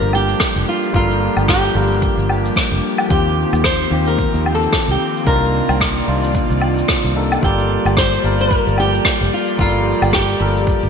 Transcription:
0.00 0.34 G1 medium
0.00 5.23 F3 medium
0.00 0.93 G3 medium
0.00 10.89 A#3 medium
0.00 3.07 D4 medium
0.00 0.94 F4 medium
0.00 5.23 G4 medium
0.00 0.95 A4 medium
0.00 0.14 A#4 medium
0.00 0.96 A#4 medium
0.00 0.92 A5 medium
0.00 shaker medium
0.13 0.64 G4 medium
0.13 low woodblock soft
0.29 shaker medium
0.40 kick medium
0.40 cross-stick medium
0.40 shaker medium
0.56 0.63 F1 medium
0.56 shaker soft
0.69 0.94 F4 medium
0.84 shaker medium
0.93 1.28 G1 medium
0.93 1.72 G3 medium
0.93 1.72 F4 medium
0.93 1.51 F4 medium
0.93 1.73 A4 medium
0.93 1.73 A#4 medium
0.93 kick loud
0.93 shaker medium
1.11 shaker soft
1.37 1.69 G1 medium
1.37 low woodblock medium
1.37 shaker medium
1.48 2.80 G4 medium
1.48 kick loud
1.48 cross-stick medium
1.48 shaker medium
1.65 shaker soft
1.74 2.09 G1 medium
1.74 3.07 G3 medium
1.74 3.07 F4 medium
1.74 3.08 A4 medium
1.74 3.09 A#4 medium
1.91 shaker medium
2.02 kick loud
2.02 shaker medium
2.17 2.49 G1 medium
2.17 shaker soft
2.29 low woodblock medium
2.45 shaker medium
2.56 kick loud
2.56 cross-stick medium
2.56 shaker medium
2.72 2.79 F1 medium
2.72 shaker soft
2.98 low woodblock medium
2.98 shaker medium
3.09 3.44 D#2 medium
3.09 3.88 D#3 medium
3.09 3.88 C4 medium
3.09 7.39 C4 medium
3.09 5.24 D#4 medium
3.09 3.89 F4 medium
3.09 3.61 G4 medium
3.09 3.89 G4 medium
3.09 kick loud
3.09 shaker medium
3.27 shaker soft
3.53 3.85 D#2 medium
3.53 low woodblock soft
3.53 shaker medium
3.64 4.04 C5 loud
3.64 kick loud
3.64 cross-stick loud
3.64 shaker medium
3.81 shaker soft
3.90 4.25 D#2 medium
3.90 5.23 D#3 medium
3.90 5.24 C4 medium
3.90 5.24 F4 medium
3.90 5.25 G4 medium
4.07 4.43 A#4 loud
4.07 shaker medium
4.18 kick loud
4.18 shaker medium
4.34 4.66 D#2 medium
4.34 shaker soft
4.46 low woodblock medium
4.55 4.91 A4 medium
4.62 shaker medium
4.73 kick loud
4.73 cross-stick medium
4.73 shaker medium
4.88 4.95 C2 medium
4.88 5.26 G4 medium
4.88 shaker medium
5.17 shaker medium
5.25 5.60 C2 medium
5.25 6.04 C3 medium
5.25 7.41 D#3 medium
5.25 6.05 A#3 medium
5.25 6.05 D4 medium
5.25 6.05 D#4 medium
5.25 7.41 F4 medium
5.25 6.06 F4 medium
5.25 6.31 A#4 medium
5.25 10.89 D5 medium
5.25 kick loud
5.25 shaker medium
5.44 shaker soft
5.69 6.01 C2 medium
5.69 low woodblock medium
5.69 shaker medium
5.81 kick loud
5.81 cross-stick medium
5.81 shaker medium
5.97 shaker medium
6.06 6.41 C2 medium
6.06 7.13 C3 medium
6.06 7.13 A#3 medium
6.06 7.13 D4 medium
6.06 7.14 D#4 medium
6.06 7.14 F4 medium
6.24 shaker medium
6.35 kick loud
6.35 shaker medium
6.50 6.82 C2 medium
6.50 shaker medium
6.61 low woodblock medium
6.78 shaker medium
6.88 kick loud
6.88 cross-stick medium
6.88 shaker medium
7.04 7.36 C2 medium
7.04 shaker soft
7.15 7.40 C3 medium
7.15 7.40 A#3 medium
7.15 7.40 D4 medium
7.15 7.40 D#4 medium
7.15 7.41 A4 medium
7.32 low woodblock medium
7.32 shaker medium
7.41 7.76 G1 medium
7.41 10.89 F3 medium
7.41 8.20 G3 medium
7.41 8.21 F4 medium
7.41 10.89 G4 medium
7.41 7.98 G4 medium
7.41 8.22 A4 medium
7.41 8.22 A#4 medium
7.41 kick loud
7.41 shaker medium
7.59 shaker soft
7.85 8.17 G1 medium
7.85 low woodblock medium
7.85 shaker medium
7.97 8.37 C5 loud
7.97 kick loud
7.97 cross-stick medium
7.97 shaker medium
8.13 shaker medium
8.22 8.58 G1 medium
8.22 9.56 G3 medium
8.22 9.56 F4 medium
8.22 9.57 A#4 medium
8.22 9.57 A5 medium
8.40 8.79 A#4 loud
8.40 shaker medium
8.51 kick medium
8.51 shaker medium
8.67 8.99 G1 medium
8.67 shaker soft
8.78 9.35 G4 medium
8.78 low woodblock soft
8.95 shaker medium
9.05 kick medium
9.05 cross-stick medium
9.05 shaker medium
9.21 9.28 F1 medium
9.21 shaker soft
9.34 9.59 F4 medium
9.48 shaker medium
9.58 9.93 G1 medium
9.58 10.37 G3 medium
9.58 10.37 F4 medium
9.58 10.15 F4 medium
9.58 10.38 A4 medium
9.58 10.38 A#4 medium
9.58 kick loud
9.58 shaker medium
9.76 shaker soft
10.02 10.34 G1 medium
10.02 low woodblock medium
10.02 shaker medium
10.13 10.89 G4 medium
10.13 kick medium
10.13 cross-stick medium
10.13 shaker medium
10.30 shaker soft
10.39 10.74 G1 medium
10.39 10.89 G3 medium
10.39 10.89 F4 medium
10.39 10.89 A4 medium
10.39 10.89 A#4 medium
10.57 shaker medium
10.67 kick loud
10.67 shaker medium
10.83 10.89 G1 medium
10.83 shaker soft

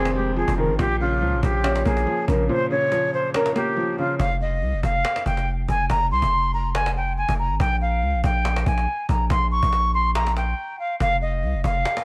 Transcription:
0.00 0.44 F1 loud
0.00 0.15 F2 loud
0.00 0.58 D#3 medium
0.00 0.36 F3 medium
0.00 0.15 G#3 medium
0.00 0.81 C4 loud
0.00 0.10 G#4 medium
0.05 cajon slap loud
0.15 0.79 G#3 medium
0.15 0.32 G4 medium
0.36 0.79 F3 medium
0.36 0.53 G#4 medium
0.36 cajon slap soft
0.48 0.70 F1 loud
0.48 cajon bass loud
0.58 0.79 D#3 medium
0.58 0.74 A#4 medium
0.58 cajon slap soft
0.69 0.79 G#1 loud
0.79 1.23 A#1 loud
0.79 1.85 A#2 loud
0.79 0.95 G4 loud
0.79 cajon bass loud
1.00 2.07 C#3 medium
1.00 1.40 F4 medium
1.00 cajon slap soft
1.22 1.34 C#2 loud
1.22 2.05 F3 medium
1.22 cajon slap soft
1.33 1.42 A#1 loud
1.43 1.84 A#1 loud
1.43 1.83 G4 medium
1.43 cajon bass medium
1.64 2.70 C#4 loud
1.64 cajon slap loud
1.76 cajon slap loud
1.85 2.06 A#1 loud
1.85 2.92 A#3 medium
1.85 2.26 G#4 medium
1.85 cajon bass medium
1.97 cajon slap medium
2.07 2.91 F3 medium
2.07 cajon slap soft
2.28 2.49 A#1 loud
2.28 2.69 C#3 medium
2.28 2.44 A#4 medium
2.28 cajon bass medium
2.49 3.56 A#2 medium
2.49 2.66 C5 loud
2.49 cajon slap soft
2.71 3.77 C#3 medium
2.71 3.11 C#5 medium
2.92 3.75 F3 medium
2.92 cajon slap medium
3.13 3.30 C5 medium
3.13 cajon slap soft
3.34 4.19 C#4 medium
3.34 3.51 A#4 loud
3.34 cajon slap loud
3.46 cajon slap loud
3.55 4.19 A#3 medium
3.55 3.96 G4 medium
3.55 cajon slap medium
3.77 4.19 F3 medium
3.77 cajon slap soft
3.98 4.20 C#3 medium
3.98 4.15 F4 medium
3.98 cajon slap soft
4.19 4.63 F1 loud
4.19 4.36 F5 loud
4.19 cajon bass loud
4.41 4.81 D#5 medium
4.41 cajon slap soft
4.62 4.75 C2 loud
4.62 cajon slap soft
4.73 4.83 F1 medium
4.83 5.04 F1 loud
4.83 5.24 F5 medium
4.83 cajon bass loud
5.05 cajon slap loud
5.16 cajon slap loud
5.26 5.67 F1 loud
5.26 5.49 G5 medium
5.26 cajon bass medium
5.37 cajon slap medium
5.47 cajon slap soft
5.68 5.89 F1 loud
5.68 5.85 G#5 medium
5.68 cajon bass medium
5.90 6.12 F1 loud
5.90 6.06 A#5 loud
5.90 cajon bass loud
6.11 6.22 C2 loud
6.11 6.51 C6 medium
6.11 cajon slap soft
6.22 7.25 F1 loud
6.22 cajon bass medium
6.32 cajon slap soft
6.53 6.70 A#5 medium
6.53 cajon slap soft
6.75 6.91 G#5 medium
6.75 cajon slap loud
6.86 cajon slap loud
6.96 7.13 G5 medium
6.96 cajon slap soft
7.17 7.34 G#5 medium
7.17 cajon slap soft
7.29 7.51 F1 loud
7.29 cajon bass medium
7.39 7.55 A#5 medium
7.39 cajon slap soft
7.50 7.59 G#1 loud
7.60 8.04 A#1 loud
7.60 7.76 G5 loud
7.60 cajon bass loud
7.81 8.21 F5 medium
7.81 cajon slap soft
8.02 8.15 C#2 loud
8.02 cajon slap soft
8.14 8.23 A#1 medium
8.24 8.65 A#1 loud
8.24 8.64 G5 medium
8.24 cajon bass loud
8.45 cajon slap loud
8.56 cajon slap loud
8.66 8.87 A#1 loud
8.66 9.06 G#5 medium
8.66 cajon bass medium
8.78 cajon slap medium
8.88 cajon slap soft
9.09 9.29 A#1 loud
9.09 9.25 A#5 medium
9.09 cajon bass medium
9.30 9.61 A#1 loud
9.30 9.46 C6 loud
9.30 cajon bass loud
9.51 9.91 C#6 medium
9.63 10.54 A#1 loud
9.63 cajon bass medium
9.73 cajon slap medium
9.94 10.10 C6 medium
9.94 cajon slap soft
10.15 10.31 A#5 medium
10.15 cajon slap loud
10.27 cajon slap loud
10.36 10.76 G5 medium
10.36 cajon slap medium
10.79 10.95 F5 medium
11.00 11.44 F1 loud
11.00 11.17 F5 loud
11.00 cajon bass loud
11.22 11.62 D#5 medium
11.22 cajon slap soft
11.43 11.56 C2 loud
11.43 cajon slap soft
11.54 11.64 F1 loud
11.64 11.85 F1 loud
11.64 12.04 F5 medium
11.64 cajon bass loud
11.85 cajon slap loud
11.97 cajon slap loud

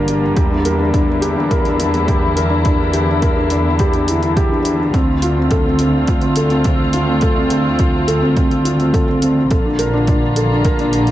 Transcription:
0.00 0.34 G1 medium
0.00 9.47 D3 medium
0.00 4.90 G3 medium
0.00 4.90 A#3 medium
0.00 0.08 D4 medium
0.00 0.33 F4 medium
0.00 0.36 G4 medium
0.00 0.38 A#4 medium
0.08 0.22 D4 medium
0.08 closed hi-hat medium
0.36 4.91 E2 medium
0.36 4.90 E4 medium
0.36 0.50 G4 medium
0.36 kick loud
0.36 closed hi-hat soft
0.50 0.64 D4 medium
0.65 0.79 A#4 medium
0.65 closed hi-hat medium
0.79 0.92 D4 medium
0.93 1.07 D4 medium
0.93 kick medium
0.93 closed hi-hat soft
1.22 1.36 G4 medium
1.22 closed hi-hat medium
1.36 1.50 D4 medium
1.51 1.64 A#4 medium
1.51 kick medium
1.51 closed hi-hat soft
1.65 1.78 D4 medium
1.65 closed hi-hat soft
1.79 1.93 D4 medium
1.79 closed hi-hat medium
1.94 closed hi-hat soft
2.08 2.22 G4 medium
2.08 kick loud
2.08 closed hi-hat soft
2.22 2.36 D4 medium
2.36 2.50 A#4 medium
2.36 closed hi-hat medium
2.50 2.63 D4 medium
2.64 2.78 D4 medium
2.64 kick medium
2.64 closed hi-hat soft
2.93 3.07 G4 medium
2.93 closed hi-hat medium
3.08 3.22 D4 medium
3.22 3.36 A#4 medium
3.22 kick medium
3.22 closed hi-hat soft
3.36 3.50 D4 medium
3.50 3.65 D4 medium
3.50 closed hi-hat medium
3.79 3.94 G4 medium
3.79 kick medium
3.79 closed hi-hat soft
3.93 4.08 D4 medium
3.93 closed hi-hat soft
4.08 4.16 E4 medium
4.08 closed hi-hat medium
4.22 4.36 E4 medium
4.22 closed hi-hat soft
4.37 4.50 G4 medium
4.37 kick medium
4.37 closed hi-hat soft
4.51 4.59 D4 medium
4.65 4.78 D4 medium
4.65 closed hi-hat medium
4.79 4.93 D4 medium
4.93 9.48 D2 medium
4.93 9.47 A3 medium
4.93 5.07 C4 medium
4.93 9.47 C4 medium
4.93 9.47 F4 medium
4.93 kick loud
4.93 closed hi-hat soft
5.22 5.36 F4 medium
5.22 closed hi-hat medium
5.37 5.50 C4 medium
5.51 5.65 A4 medium
5.51 kick medium
5.51 closed hi-hat soft
5.66 5.78 C4 medium
5.79 5.93 C4 medium
5.79 closed hi-hat medium
6.07 6.22 F4 medium
6.07 kick medium
6.07 closed hi-hat soft
6.21 6.36 C4 medium
6.21 closed hi-hat soft
6.36 6.50 A4 medium
6.36 closed hi-hat medium
6.50 6.64 C4 medium
6.50 closed hi-hat soft
6.64 6.79 C4 medium
6.64 kick loud
6.64 closed hi-hat soft
6.93 7.08 F4 medium
6.93 closed hi-hat medium
7.08 7.22 C4 medium
7.21 7.36 A4 medium
7.21 kick medium
7.21 closed hi-hat soft
7.36 7.49 C4 medium
7.50 7.64 C4 medium
7.50 closed hi-hat medium
7.79 7.93 F4 medium
7.79 kick medium
7.79 closed hi-hat soft
7.94 8.08 C4 medium
8.08 8.22 A4 medium
8.08 closed hi-hat medium
8.22 8.35 C4 medium
8.37 8.50 C4 medium
8.37 kick medium
8.37 closed hi-hat soft
8.51 closed hi-hat soft
8.65 8.79 F4 medium
8.65 closed hi-hat medium
8.79 8.93 C4 medium
8.79 closed hi-hat soft
8.94 9.07 A4 medium
8.94 kick medium
8.94 closed hi-hat soft
9.08 9.21 C4 medium
9.22 9.36 C4 medium
9.22 closed hi-hat medium
9.51 11.11 A#1 medium
9.51 11.11 D3 medium
9.51 11.11 A#3 medium
9.51 11.11 F4 medium
9.51 9.64 A4 medium
9.51 kick medium
9.51 closed hi-hat soft
9.65 9.79 D4 medium
9.79 9.93 A#4 medium
9.79 closed hi-hat medium
9.93 10.07 D4 medium
10.07 10.22 D4 medium
10.07 kick medium
10.07 closed hi-hat soft
10.36 10.50 A4 medium
10.36 closed hi-hat soft
10.52 10.65 D4 medium
10.65 10.79 A#4 medium
10.65 kick medium
10.65 closed hi-hat soft
10.79 10.93 D4 medium
10.79 closed hi-hat soft
10.93 11.08 D4 medium
10.93 closed hi-hat medium
11.07 closed hi-hat soft

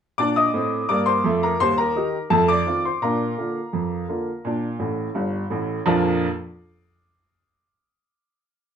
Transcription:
0.18 0.46 A#2 medium
0.18 0.47 D4 medium
0.18 0.35 D5 medium
0.18 0.36 D6 loud
0.36 0.86 D#5 medium
0.36 0.86 D#6 medium
0.54 0.82 A2 medium
0.54 0.83 C4 medium
0.89 1.17 G2 medium
0.89 1.18 A#3 medium
0.89 1.06 D5 medium
0.89 1.06 D6 medium
1.06 1.39 C5 medium
1.06 1.40 C6 medium
1.24 1.52 F2 medium
1.24 1.53 A3 medium
1.43 1.60 A#4 medium
1.43 1.60 A#5 medium
1.60 1.90 D#2 medium
1.60 1.81 G3 medium
1.60 1.77 C5 medium
1.60 1.77 C6 loud
1.78 2.27 A#4 medium
1.78 2.20 A#5 medium
1.96 2.15 D#3 medium
1.96 2.15 D#4 medium
1.96 2.16 G4 medium
2.30 2.60 F2 medium
2.30 2.51 A3 medium
2.30 2.47 A4 medium
2.30 2.48 A5 medium
2.48 2.82 D5 medium
2.48 2.82 D6 loud
2.66 2.86 D#3 medium
2.66 2.86 C4 soft
2.66 2.86 F4 medium
2.85 3.02 C5 soft
2.85 3.02 C6 medium
3.02 3.32 A#2 medium
3.02 3.23 D4 soft
3.02 5.12 A#4 medium
3.02 5.13 F5 medium
3.02 4.73 A#5 medium
3.38 3.57 D3 soft
3.38 3.58 A#3 soft
3.38 3.58 F4 soft
3.73 4.03 F2 medium
4.09 4.28 D3 soft
4.09 4.29 A#3 soft
4.09 4.29 F4 soft
4.45 4.75 A#2 medium
4.45 4.65 D4 soft
4.79 5.06 A1 medium
4.79 5.06 A2 medium
5.15 5.42 G1 medium
5.15 5.42 G2 medium
5.50 5.77 A1 medium
5.50 5.77 A2 medium
5.86 6.26 A#1 medium
5.86 6.26 F2 medium
5.86 6.26 F3 medium
5.86 6.26 A#3 medium
5.86 6.26 D4 medium
5.86 6.26 F4 medium

